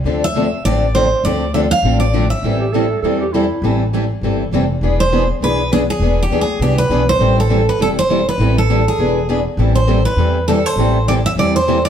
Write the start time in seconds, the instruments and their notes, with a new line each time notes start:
0.04 upright bass D2, steel-string acoustic guitar D3 F3 A3 C4 D4 F4 A4
0.24 steel-string acoustic guitar E5
0.35 steel-string acoustic guitar D3 F3 A3 C4 D4 F4 A4
0.65 upright bass A1, steel-string acoustic guitar D3 F3 A3 C4 D4 F4 A4 D5
0.95 steel-string acoustic guitar D3 F3 A3 C4 D4 F4 A4 C5
1.24 upright bass D2, steel-string acoustic guitar D3 F3 A3 C4 D4 F4 A4 D5
1.54 steel-string acoustic guitar D3 F3 A3 C4 D4 F4 A4 E5
1.71 steel-string acoustic guitar F5
1.83 upright bass A1, steel-string acoustic guitar D3 F3 A3 C4 D4 F4 A4
2.00 steel-string acoustic guitar D5
2.13 steel-string acoustic guitar D3 F3 A3 C4 D4 F4 A4
2.30 steel-string acoustic guitar E5
2.43 upright bass A1, steel-string acoustic guitar E3 G3 C4 E4 A4
2.60 clarinet G4
2.72 steel-string acoustic guitar E3 G3 C4 E4 A4, clarinet A4
3.02 upright bass E2, steel-string acoustic guitar E3 G3 C4 E4 A4, clarinet A4
3.20 clarinet G4
3.32 steel-string acoustic guitar E3 G3 C4 E4 A4, clarinet E4
3.62 upright bass A1, steel-string acoustic guitar E3 G3 C4 E4 A4
3.93 steel-string acoustic guitar E3 G3 C4 E4 A4
4.22 upright bass G1, steel-string acoustic guitar E3 G3 C4 E4 A4
4.51 upright bass F1, steel-string acoustic guitar E3 G3 C4 E4 A4
4.81 upright bass E1, steel-string acoustic guitar E3 B3 D4 G#4 B4
5.00 steel-string acoustic guitar C5
5.12 steel-string acoustic guitar E3 B3 D4 G#4 B4
5.41 upright bass B1, steel-string acoustic guitar E3 B3 D4 G#4 B4
5.72 steel-string acoustic guitar E3 B3 D4 G#4 B4
5.90 steel-string acoustic guitar G#4
6.00 upright bass E1, steel-string acoustic guitar E3 B3 D4 G#4 B4
6.23 steel-string acoustic guitar G4
6.30 upright bass D2, steel-string acoustic guitar E3 B3 D4 G#4 B4
6.41 steel-string acoustic guitar G#4
6.59 upright bass C2, steel-string acoustic guitar E3 B3 D4 G4 G#4 B4
6.78 steel-string acoustic guitar B4
6.89 upright bass B1, steel-string acoustic guitar E3 B3 D4 G#4 B4
7.09 steel-string acoustic guitar C5
7.19 upright bass A1, steel-string acoustic guitar E3 G3 C4 E4 A4
7.40 steel-string acoustic guitar A4
7.51 steel-string acoustic guitar E3 G3 C4 E4 A4
7.69 steel-string acoustic guitar B4
7.79 upright bass E1, steel-string acoustic guitar E3 G3 C4 E4 A4
7.99 steel-string acoustic guitar C5
8.10 steel-string acoustic guitar E3 G3 C4 E4 A4
8.29 steel-string acoustic guitar B4
8.38 upright bass A1, steel-string acoustic guitar E3 G3 C4 E4 A4
8.58 steel-string acoustic guitar A4
8.70 steel-string acoustic guitar E3 G3 C4 E4 A4
8.88 steel-string acoustic guitar G#4
8.98 upright bass E1, steel-string acoustic guitar E3 B3 D4 G#4 B4
9.29 steel-string acoustic guitar E3 B3 D4 G#4 B4
9.57 upright bass A1, steel-string acoustic guitar E3 G3 C4 E4 A4
9.75 steel-string acoustic guitar C5
9.88 steel-string acoustic guitar E3 G3 C4 E4 A4
10.05 steel-string acoustic guitar B4
10.16 upright bass E2, steel-string acoustic guitar E3 G3 C4 E4 A4
10.48 steel-string acoustic guitar E3 G3 C4 E4 A4
10.66 steel-string acoustic guitar C5
10.76 upright bass A1, steel-string acoustic guitar E3 G3 C4 E4 A4
11.08 steel-string acoustic guitar E3 G3 C4 E4 A4 D5
11.26 steel-string acoustic guitar E5
11.35 upright bass E2, steel-string acoustic guitar E3 G3 C4 E4 A4 D5
11.56 steel-string acoustic guitar C5
11.68 steel-string acoustic guitar E3 G3 C4 E4 A4
11.85 steel-string acoustic guitar D5